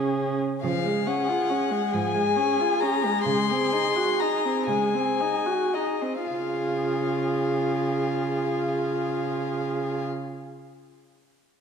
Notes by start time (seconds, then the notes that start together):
Already playing: C#3 C#4 G#4
0.63 C#3 F3 G#4 F5
0.86 G#3
1.07 C#4 F#5
1.29 F4
1.50 C#4
1.71 G#3
1.93 G#2 F3 G#5
2.15 G#3
2.37 C#4
2.60 F4
2.80 C#4 A#5
3.05 G#3
3.26 C#3 G#3 C6
3.51 C4
3.73 D#4
3.96 F#4
4.19 D#4 A#5
4.45 C4
4.67 C#3 G#3 G#5
4.95 C4
5.21 D#4
5.46 F#4
5.73 D#4 D#5
6.02 C4
6.26 C#3 F4 G#4 F5